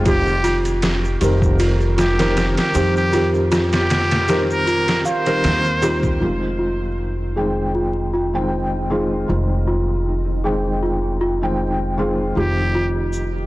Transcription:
0.00 1.18 F1 medium
0.05 1.16 D#3 medium
0.05 1.17 G3 medium
0.05 1.17 C4 medium
0.05 0.42 F4 medium
0.05 0.60 G4 loud
0.05 1.18 G4 medium
0.05 kick loud
0.05 ride medium
0.05 shaker soft
0.27 shaker soft
0.44 0.64 F4 loud
0.44 ride medium
0.44 shaker medium
0.65 ride soft
0.65 shaker soft
0.82 snare loud
0.82 ride medium
0.82 shaker medium
1.05 shaker soft
1.21 2.54 F1 medium
1.21 1.94 D#3 medium
1.21 1.94 G3 medium
1.21 1.94 C4 medium
1.21 1.41 G4 medium
1.21 1.94 A#4 medium
1.21 ride medium
1.21 shaker loud
1.42 kick medium
1.42 shaker soft
1.59 1.96 F4 medium
1.59 ride medium
1.59 shaker soft
1.80 shaker soft
1.98 2.18 F4 loud
1.98 2.52 G4 medium
1.98 snare loud
1.98 ride medium
1.98 shaker medium
2.18 2.71 D#3 medium
2.18 2.71 G3 medium
2.18 2.71 C4 medium
2.18 2.71 A#4 loud
2.18 snare loud
2.18 ride medium
2.18 shaker soft
2.37 snare loud
2.37 ride medium
2.37 shaker soft
2.57 2.92 G4 medium
2.57 snare loud
2.57 ride medium
2.57 shaker soft
2.74 5.03 F2 medium
2.74 3.09 D#3 medium
2.74 3.09 G3 medium
2.74 3.09 C4 medium
2.74 2.95 G4 medium
2.74 3.09 G4 loud
2.74 ride medium
2.74 shaker loud
2.96 3.31 G4 medium
2.96 shaker soft
3.12 4.24 D#3 medium
3.12 4.24 G3 medium
3.12 4.25 C4 medium
3.12 3.50 F4 medium
3.12 4.25 G4 medium
3.12 ride medium
3.12 shaker soft
3.34 shaker soft
3.52 3.72 F4 loud
3.52 snare loud
3.52 ride medium
3.52 shaker medium
3.72 4.42 G4 loud
3.72 snare loud
3.72 ride medium
3.72 shaker soft
3.90 snare loud
3.90 ride medium
3.90 shaker medium
4.11 snare loud
4.11 ride medium
4.11 shaker soft
4.28 5.01 D#3 medium
4.28 5.01 G3 medium
4.28 5.02 C4 medium
4.28 4.48 G4 medium
4.28 5.02 A#4 medium
4.28 snare loud
4.28 ride medium
4.28 shaker medium
4.51 5.01 A#4 loud
4.51 shaker soft
4.67 4.86 F4 medium
4.67 ride medium
4.67 shaker medium
4.88 snare loud
4.88 ride medium
4.88 shaker soft
5.05 6.08 C5 loud
5.05 5.24 F5 medium
5.05 shaker medium
5.26 5.78 D#3 medium
5.26 5.78 G3 medium
5.26 5.78 C4 medium
5.26 5.79 A#4 loud
5.26 ride medium
5.26 shaker soft
5.44 6.18 D#2 medium
5.44 snare loud
5.44 ride medium
5.44 shaker soft
5.64 shaker soft
5.82 6.16 D#3 medium
5.82 6.17 G3 medium
5.82 6.17 C4 medium
5.82 6.02 F4 medium
5.82 6.17 G4 loud
5.82 ride medium
5.82 shaker medium
6.03 kick medium
6.03 shaker soft
6.20 9.25 F1 medium
6.20 7.32 D#3 medium
6.20 7.32 G#3 medium
6.20 7.33 C4 medium
6.20 13.46 D#4 medium
6.20 6.58 F4 medium
6.20 7.33 F4 medium
6.59 6.79 F4 medium
7.36 8.09 D#3 medium
7.36 8.09 G#3 medium
7.36 8.09 C4 medium
7.36 7.56 G#4 medium
7.36 8.10 G5 medium
7.75 8.12 F4 medium
8.14 8.33 F4 medium
8.33 8.86 D#3 medium
8.33 8.86 G#3 medium
8.33 8.86 C4 medium
8.33 8.86 G5 medium
8.90 9.24 D#3 medium
8.90 9.24 G#3 medium
8.90 9.25 C4 medium
8.90 9.25 F4 medium
8.90 9.10 G#4 medium
9.28 12.33 F1 medium
9.28 10.39 D#3 medium
9.28 10.40 G#3 medium
9.28 10.40 C4 medium
9.28 9.66 F4 medium
9.28 10.41 F4 medium
9.67 9.87 F4 medium
10.44 11.17 D#3 medium
10.44 11.17 G#3 medium
10.44 11.17 C4 medium
10.44 10.64 G#4 medium
10.44 11.17 G5 medium
10.83 11.19 F4 medium
11.21 11.41 F4 medium
11.42 11.94 D#3 medium
11.42 11.94 G#3 medium
11.42 11.94 C4 medium
11.42 11.94 G5 medium
11.97 12.32 D#3 medium
11.97 12.32 G#3 medium
11.97 12.32 C4 medium
11.97 12.33 F4 medium
11.97 12.18 G#4 medium
12.35 13.46 F1 medium
12.35 13.46 D#3 medium
12.35 13.46 G3 medium
12.35 13.46 C4 medium
12.35 12.73 F4 medium
12.35 12.90 G4 medium
12.35 13.46 G4 medium
12.75 12.95 F4 medium
13.13 shaker medium

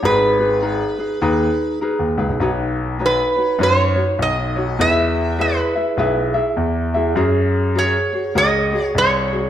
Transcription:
0.03 0.80 G#1 medium
0.03 0.40 D#4 medium
0.03 0.39 G#4 medium
0.03 0.39 A#4 medium
0.03 0.38 B4 medium
0.03 1.79 B4 medium
0.39 0.61 D#4 soft
0.39 0.62 G#4 medium
0.39 0.61 B4 medium
0.61 1.00 D#4 medium
0.61 0.98 G#4 medium
0.61 0.98 A#4 medium
0.61 0.97 B4 medium
0.98 1.21 D#4 soft
0.98 1.21 G#4 soft
0.98 1.21 B4 soft
1.22 1.46 D#2 medium
1.22 1.81 D#4 medium
1.22 1.81 G#4 loud
1.22 1.81 B4 loud
1.81 2.19 D#4 medium
1.81 2.18 G#4 medium
1.81 2.18 A#4 medium
1.81 2.17 B4 medium
1.99 2.16 D#2 medium
2.17 2.28 C#2 medium
2.17 2.40 D#4 soft
2.17 2.41 G#4 soft
2.17 2.40 B4 soft
2.29 2.38 B1 medium
2.40 3.17 B1 medium
2.40 2.99 D#4 medium
2.40 3.00 F#4 medium
2.40 2.99 B4 medium
2.40 3.00 C#5 medium
2.99 3.37 D#4 medium
2.99 3.36 F#4 medium
2.99 3.37 B4 medium
2.99 3.35 C#5 medium
3.06 3.59 B4 medium
3.36 3.59 D#4 soft
3.36 3.59 F#4 soft
3.36 3.59 C#5 soft
3.59 3.98 F#2 medium
3.59 3.97 D#4 medium
3.59 3.96 F#4 medium
3.59 3.97 B4 medium
3.59 3.95 C#5 medium
3.63 4.22 C#5 medium
3.96 4.57 D#4 soft
3.96 4.56 F#4 soft
3.96 4.55 C#5 medium
4.19 4.79 B1 medium
4.19 4.81 D#5 medium
4.56 4.79 D#4 soft
4.56 4.80 F#4 soft
4.56 4.79 C#5 soft
4.79 5.56 E2 medium
4.79 5.38 E4 medium
4.79 5.39 G#4 medium
4.79 5.37 B4 medium
4.79 5.39 E5 medium
4.79 5.41 E5 loud
5.38 5.76 E4 medium
5.38 5.75 G#4 medium
5.38 5.75 B4 medium
5.38 6.32 B4 medium
5.38 5.74 E5 medium
5.75 5.97 E4 soft
5.75 5.98 G#4 soft
5.75 5.98 E5 soft
5.97 6.36 B1 medium
5.97 6.35 E4 medium
5.97 6.34 G#4 medium
5.97 6.35 B4 medium
5.97 6.33 E5 medium
6.34 6.95 E4 medium
6.34 6.95 G#4 medium
6.34 6.93 E5 medium
6.57 7.17 E2 medium
6.94 7.17 E4 soft
6.94 7.16 G#4 medium
6.94 7.17 E5 medium
7.16 7.93 F#2 medium
7.16 7.75 F#4 medium
7.16 7.75 G#4 loud
7.16 7.75 A#4 medium
7.16 7.76 C#5 medium
7.75 8.13 F#4 medium
7.75 8.13 G#4 medium
7.75 8.12 A#4 medium
7.75 8.11 C#5 medium
7.75 8.37 C#5 medium
8.13 8.34 F#4 soft
8.13 8.35 G#4 soft
8.13 8.35 C#5 medium
8.35 8.74 C#2 medium
8.35 8.72 F#4 medium
8.35 8.72 G#4 medium
8.35 8.71 A#4 medium
8.35 8.71 C#5 medium
8.35 8.85 D#5 loud
8.72 9.33 F#4 soft
8.72 9.31 G#4 soft
8.72 9.30 C#5 soft
8.85 8.98 C#5 loud
8.95 9.50 C2 medium
8.95 9.50 C#5 medium
9.32 9.50 F#4 soft
9.32 9.50 G#4 soft
9.32 9.50 C#5 soft

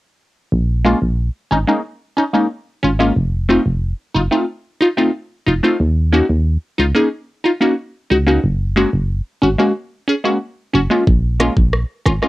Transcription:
0.52 0.95 A#1 loud
0.85 0.98 G#3 medium
0.85 0.98 A#3 medium
0.85 0.99 C#4 medium
0.85 0.99 F4 medium
1.02 1.30 A#1 medium
1.51 1.65 G#1 medium
1.51 1.58 C#4 medium
1.51 1.58 D#4 loud
1.67 1.81 G#3 medium
1.67 1.81 A#3 medium
1.67 1.81 C#4 medium
1.67 1.81 D#4 medium
2.17 2.24 C#4 medium
2.17 2.24 D#4 medium
2.33 2.47 G#3 medium
2.33 2.47 A#3 medium
2.33 2.47 C#4 medium
2.33 2.47 D#4 medium
2.83 3.11 G#1 medium
2.83 2.90 C#4 medium
2.83 2.90 F4 medium
2.99 3.13 G#3 medium
2.99 3.13 A#3 medium
2.99 3.13 C#4 medium
2.99 3.13 F4 medium
3.16 3.58 F1 loud
3.49 3.62 A3 medium
3.49 3.62 C4 medium
3.49 3.63 D#4 medium
3.49 3.63 F4 medium
3.66 3.94 F1 loud
4.15 4.29 F#1 medium
4.15 4.21 D#4 medium
4.15 4.22 F4 loud
4.31 4.45 A3 medium
4.31 4.45 C4 medium
4.31 4.45 D#4 medium
4.31 4.45 F4 medium
4.81 4.87 D#4 medium
4.81 4.88 F4 medium
4.97 5.10 A3 medium
4.97 5.11 C4 medium
4.97 5.11 D#4 medium
4.97 5.11 F4 medium
5.46 5.61 F1 medium
5.46 5.53 D#4 medium
5.46 5.54 F4 medium
5.63 5.76 A3 medium
5.63 5.77 C4 medium
5.63 5.77 D#4 medium
5.63 5.77 F4 medium
5.80 6.22 D#2 loud
6.12 6.26 A#3 medium
6.12 6.26 C#4 medium
6.12 6.26 D#4 medium
6.12 6.26 F#4 medium
6.29 6.58 D#2 loud
6.78 6.93 C#2 medium
6.78 6.85 D#4 medium
6.78 6.86 F4 loud
6.95 7.08 A#3 medium
6.95 7.08 C#4 medium
6.95 7.09 D#4 medium
6.95 7.09 G#4 medium
7.44 7.51 D#4 medium
7.44 7.52 F4 medium
7.61 7.74 A#3 medium
7.61 7.74 C#4 medium
7.61 7.75 D#4 medium
7.61 7.75 F#4 medium
8.10 8.39 C#2 medium
8.10 8.17 D#4 medium
8.10 8.18 F#4 loud
8.27 8.40 A#3 medium
8.27 8.40 C#4 medium
8.27 8.41 D#4 medium
8.27 8.41 F#4 medium
8.44 8.86 F#1 loud
8.76 8.89 G#3 medium
8.76 8.90 A#3 medium
8.76 8.90 C#4 medium
8.76 8.90 F#4 medium
8.93 9.21 F#1 loud
9.42 9.57 G#1 medium
9.42 9.49 C#4 medium
9.42 9.49 F#4 medium
9.58 9.72 G#3 medium
9.58 9.72 A#3 medium
9.58 9.72 C#4 medium
9.58 9.73 F#4 medium
10.08 10.15 C#4 medium
10.08 10.15 G#4 loud
10.24 10.38 G#3 medium
10.24 10.38 A#3 medium
10.24 10.38 C#4 medium
10.24 10.38 F#4 medium
10.74 10.89 F#1 medium
10.74 10.81 C#4 medium
10.74 10.81 F#4 medium
10.90 11.04 G#3 medium
10.90 11.04 A#3 medium
10.90 11.04 C#4 medium
10.90 11.04 F4 medium
11.07 11.50 A#1 loud
11.07 kick loud
11.40 11.53 G#3 medium
11.40 11.53 A#3 medium
11.40 11.54 C#4 medium
11.40 11.54 F4 loud
11.40 cross-stick medium
11.40 closed hi-hat medium
11.57 11.85 A#1 medium
11.57 kick medium
11.73 cross-stick medium
12.06 12.20 G#1 medium
12.06 12.13 C#4 medium
12.06 12.13 F4 loud
12.06 kick medium
12.06 cross-stick medium
12.06 closed hi-hat medium
12.22 12.28 G#3 medium
12.22 12.28 A#3 medium
12.22 12.28 C#4 medium
12.22 12.28 F4 medium
12.22 cross-stick medium

